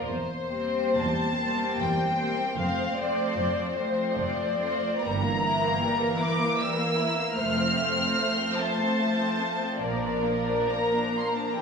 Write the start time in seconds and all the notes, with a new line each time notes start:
0.05 E1 E2 C5
0.49 G3 A#3 C4 C5
0.94 E1 E2 A5
1.37 G3 A#3 C4 C5
1.78 E1 E2 G5
2.18 G3 A#3 C4 C5
2.57 F1 F2 F3 A3 C4 C5 F5
2.95 F3 A3 C4 C5 D5
3.36 F1 F2
3.76 F3 A3 C4 C5
4.16 F1 F2 D5
4.60 F3 A3 C4 C5
5.03 G1 G2 E3 G3 A#3 A#4 A#5
5.23 A#3
5.44 E4
5.64 A#3
5.82 G3
6.01 A#3
6.18 E4 D6
6.40 A#3
6.58 G3 E6
6.77 A#3
6.97 E4
7.16 A#3
7.36 F1 F2 F3 A3 C5 F6
7.56 C4
7.74 A3
7.96 C4
8.18 A3
8.38 C4
8.57 A3 A5
8.79 C4
8.98 A3
9.19 C4
9.38 A3
9.59 C4
9.77 A#1 A#2 A#3 A#4 D5
10.03 D4
10.23 A#3
10.46 D4
10.70 A#3 A#5
10.92 D4
11.13 A#3
11.19 C6
11.28 A#5
11.34 D4
11.38 A5
11.47 A#5
11.56 C2 C3 E3 G3 A4 G5